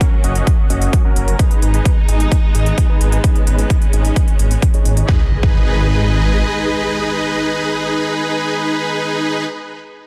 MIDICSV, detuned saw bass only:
0, 0, Header, 1, 2, 480
1, 0, Start_track
1, 0, Key_signature, 5, "minor"
1, 0, Tempo, 461538
1, 1448, Time_signature, 4, 2, 24, 8
1, 10471, End_track
2, 0, Start_track
2, 0, Title_t, "Detuned saw bass"
2, 0, Program_c, 0, 39
2, 248, Note_on_c, 0, 30, 91
2, 429, Note_off_c, 0, 30, 0
2, 728, Note_on_c, 0, 30, 84
2, 909, Note_off_c, 0, 30, 0
2, 1208, Note_on_c, 0, 30, 86
2, 1389, Note_off_c, 0, 30, 0
2, 1688, Note_on_c, 0, 32, 96
2, 1869, Note_off_c, 0, 32, 0
2, 2168, Note_on_c, 0, 32, 89
2, 2349, Note_off_c, 0, 32, 0
2, 2648, Note_on_c, 0, 32, 89
2, 2829, Note_off_c, 0, 32, 0
2, 3128, Note_on_c, 0, 32, 81
2, 3309, Note_off_c, 0, 32, 0
2, 3608, Note_on_c, 0, 32, 97
2, 3789, Note_off_c, 0, 32, 0
2, 4088, Note_on_c, 0, 32, 81
2, 4269, Note_off_c, 0, 32, 0
2, 4569, Note_on_c, 0, 32, 89
2, 4749, Note_off_c, 0, 32, 0
2, 5048, Note_on_c, 0, 32, 101
2, 5229, Note_off_c, 0, 32, 0
2, 5289, Note_on_c, 0, 32, 96
2, 5422, Note_off_c, 0, 32, 0
2, 5649, Note_on_c, 0, 32, 95
2, 6687, Note_off_c, 0, 32, 0
2, 10471, End_track
0, 0, End_of_file